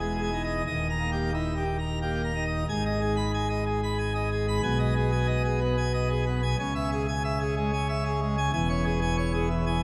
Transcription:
Already playing: E1 E2
0.00 G#3 G#4
0.22 G#5
0.33 D#4
0.44 D#5
0.67 D#1 D#2 D#5
0.90 A#5
1.01 A#3
1.12 G4
1.34 D#4 E4
1.57 G4
1.79 A#5
2.02 A#3 G4
2.24 A#5
2.36 D#4
2.47 D#5
2.69 G#1 G#2 G#5
2.86 D#5
3.01 G#4
3.17 B5
3.34 G#5
3.49 D#5
3.66 G#4
3.84 B5
3.99 G#5
4.15 D#5
4.32 G#4
4.48 B5
4.63 B1 B2 G#5
4.79 D#5
4.96 G#4
5.12 G#5
5.27 D#5
5.45 G#4
5.61 B3
5.77 G#5
5.94 D#5
6.10 G#4
6.26 B3
6.43 G#5
6.59 C#2 C#3 G#5
6.75 E5
6.92 G#4
7.08 G#5
7.24 E5
7.40 G#4
7.57 G#3
7.73 G#5
7.89 E5
8.06 G#4
8.22 G#3
8.38 G#5
8.53 E1 E2 G#5
8.69 C#5
8.85 G#4
9.02 G#5
9.17 C#5
9.34 G#4
9.49 E3
9.67 G#5

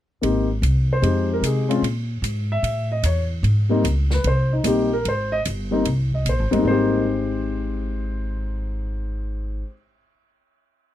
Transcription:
0.22 G#1 A#3 C4 D#4 G4, ride
0.62 C2, hi-hat pedal, ride
0.93 C5
1.02 F2 G#3 C4 D#4 G4, ride
1.33 A#4
1.42 C3, hi-hat pedal, ride
1.46 G#4
1.69 G#3 C4 C#4 F4, ride
1.82 A#2, ride
2.22 G#2, hi-hat pedal, ride
2.52 E5
2.63 A2, ride
2.92 D#5
3.03 E2 C#5, hi-hat pedal, ride
3.43 G#2, ride
3.69 G3 A#3 C4 D#4
3.84 C#2, hi-hat pedal, ride
4.11 B4, snare
4.24 C2 C5, ride
4.53 D#4
4.64 A#1 G3 A#3 C4 D#4 G4, hi-hat pedal, ride
4.93 A#4
5.05 G#1 C5, ride
5.32 D#5
5.45 G1, hi-hat pedal, ride
5.71 G3 A#3 C4 D#4
5.85 C2, ride
6.12 D#5, kick
6.25 A#1, hi-hat pedal, ride
6.29 C5
6.39 G#1
6.51 G1 G#2 G3 A#3 C4 D#4, ride
6.59 G#2 G#3
6.65 G#1 C4 C5
6.71 G4

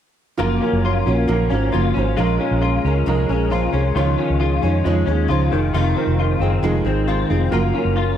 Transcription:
0.37 F#1 F#2 C#3 F3 A#3 C#4 F4 F#4 A#4
0.61 C#4 F4 F#4 A#4
0.73 F#1
0.84 F4 F#4 C#5
1.06 A#1 F3 A#3 C#4 F4 F#4 C#5
1.28 A#1 F#2 C#3 F3 A#3 C#4 F4 F#4 A#4
1.50 G#1 F3 A#3 C#4 F4 F#4
1.54 C5
1.72 F#1 C#3 F3 A#3 C#4 F4 F#4 A#4
1.94 G#1 A#3 C#4 F4 F#4 C5
1.98 F3
2.17 A#1 A#2 F3 G#3 C#4 F4 G#4 A#4
2.40 C#4 G#4 C#5
2.51 A#1
2.62 C#4 F4 G#4 C#5
2.85 C#2 F3 G#3 C#4 G#4 A#4
3.06 C2 A#2 F3 G#3 C#4 G#4 A#4
3.29 A#1 F3 G#3 C#4 G#4 A#4
3.50 A#2 F3 G#3 C#4 F4 G#4 C5
3.73 C2 F3 G#3 C#4 G#4 C#5
3.95 C#2 C#3 D#3 F3 G#3 D#4 F4 C#5
4.18 C#4 D#4 F4 C#5
4.30 C#2
4.40 D#4 F4 G#4
4.62 F2 F3 G#3 C#4 D#4 F4 C#5
4.84 F2 C#3 F3 G#3 D#4 F4 C#5
5.06 D#2 F3 G#3 C#4 D#4 F4 C#5
5.28 C#2 C#3 F3 G#3 D#4 F4 C5
5.51 F1 D#3 G#3 D#4 F4 G#4
5.74 F1 F2 C3 D#3 G#3 D#4 F4
5.95 C4 D#4 F4 A#4
6.07 F1
6.19 D#4 F4 A#4
6.40 F#1 D#3 G#3 C4 D#4 F4 G#4
6.63 F1 F2 C3 D#3 G#3 D#4 F4 G#4
6.85 G#1 D#3 G#3 C4 D#4 F4 G#4
7.07 C3 D#3 G#3 D#4 F4 G#4
7.29 F1 D#3 G#3 C4 D#4 F4 G#4
7.51 F#1 F#2 C#3 F3 A#3 C#4 F4 F#4 A#4
7.74 C#4 F4 F#4 A#4
7.85 F#1
7.95 F4 F#4 A#4

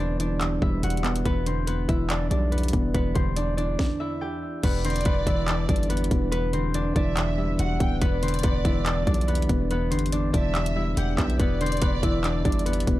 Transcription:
Already playing: E1 D3 E3 G3 B3 C4 E4 C5 E5
0.00 E2 D4 D5
0.20 E3 D4 D5, closed hi-hat
0.41 E2, clap, closed hi-hat
0.62 E1 G3 E4 E5, kick
0.83 E1 E2 F#4 F#5, closed hi-hat
0.90 closed hi-hat
0.97 closed hi-hat
1.04 B3, clap, closed hi-hat
1.16 closed hi-hat
1.25 E1 E2 B3 B4, kick, closed hi-hat
1.46 D3 C4 C5, closed hi-hat
1.67 E2 B3 B4, closed hi-hat
1.89 E1 E3 E4 E5, kick, closed hi-hat
2.10 E2 D4 D5, clap, closed hi-hat
2.30 B1 G3 D4 D5, closed hi-hat
2.52 E2 B3 B4, closed hi-hat
2.58 closed hi-hat
2.63 closed hi-hat
2.68 closed hi-hat
2.73 E1 B3, kick, closed hi-hat
2.94 E1 E2 B3 B4, kick, closed hi-hat
3.14 E1 D3 C4 C5, kick, closed hi-hat
3.36 E2 D4 D5, closed hi-hat
3.57 E3 D4 D5, closed hi-hat
3.79 kick, snare
4.00 E4 E5
4.21 G4 G5
4.63 E1 E2 B3 B4 D5, kick, closed hi-hat, crash
4.84 D3 C4 C5, closed hi-hat
4.90 closed hi-hat
4.96 closed hi-hat
5.01 closed hi-hat
5.05 E1 E2 B3 B4, kick, closed hi-hat
5.27 E1 E3 E4 E5, kick, closed hi-hat
5.48 E2 D4 D5, clap, closed hi-hat
5.69 G1 G3 D4 D5, kick, closed hi-hat
5.76 closed hi-hat
5.83 closed hi-hat
5.90 E2 B3 B4, closed hi-hat
5.97 closed hi-hat
6.04 closed hi-hat
6.11 E1 B3, kick, closed hi-hat
6.32 E2 B3 B4, closed hi-hat
6.53 D3 C4 C5, closed hi-hat
6.74 E2 D4 D5, closed hi-hat
6.95 E1 E3 D4 D5 E5, kick, closed hi-hat
7.17 E2, clap, closed hi-hat
7.38 G3 E4 E5
7.59 E1 E2 F#4 F#5, closed hi-hat
7.80 D1 B3 G5, kick, closed hi-hat
8.01 E1 E2 B3 B4 D5, kick, closed hi-hat
8.22 D3 C4 C5, closed hi-hat
8.28 closed hi-hat
8.34 closed hi-hat
8.39 closed hi-hat
8.43 E1 E2 B3 B4, kick, closed hi-hat
8.65 E1 E3 E4 E5, kick, closed hi-hat
8.86 E2 D4 D5, clap, closed hi-hat
9.06 B1 G3 D4 D5, kick, closed hi-hat
9.14 closed hi-hat
9.21 closed hi-hat
9.28 E2 B3 B4, closed hi-hat
9.35 closed hi-hat
9.42 closed hi-hat
9.49 E1 B3, kick, closed hi-hat
9.71 E2 B3 B4, closed hi-hat
9.90 G1 D3 C4 C5, closed hi-hat
9.99 closed hi-hat
10.06 closed hi-hat
10.12 E2 D4 D5, closed hi-hat
10.33 E1 E3 D4 D5 E5, kick, closed hi-hat
10.55 E2, clap, closed hi-hat
10.66 closed hi-hat
10.76 G3 E4 E5
10.97 E1 E2 G4 F#5 G5, closed hi-hat
11.18 B1 B3 E5, kick, clap, closed hi-hat, open hi-hat
11.30 closed hi-hat
11.39 E1 E2 B3 B4 D5, kick, closed hi-hat
11.61 D3 C4 C5, closed hi-hat
11.66 closed hi-hat
11.72 closed hi-hat
11.77 closed hi-hat
11.81 E1 E2 B3 B4, kick, closed hi-hat
12.03 E1 E3 E4 E5, kick, closed hi-hat
12.24 E2 D4 D5, clap, closed hi-hat
12.45 G1 G3 D4 D5, kick, closed hi-hat
12.52 closed hi-hat
12.59 closed hi-hat
12.66 E2 B3 B4, closed hi-hat
12.73 closed hi-hat
12.80 closed hi-hat
12.87 E1 B3, kick, closed hi-hat

